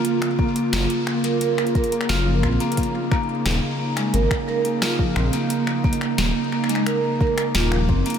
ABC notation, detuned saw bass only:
X:1
M:4/4
L:1/8
Q:1/4=88
K:Ebdor
V:1 name="Detuned saw bass" clef=bass
z2 G,,, z3 G,,, B,,, | z2 E,,, z A,,, z2 B,,, | z2 E,,, z3 E,,, G,,, |]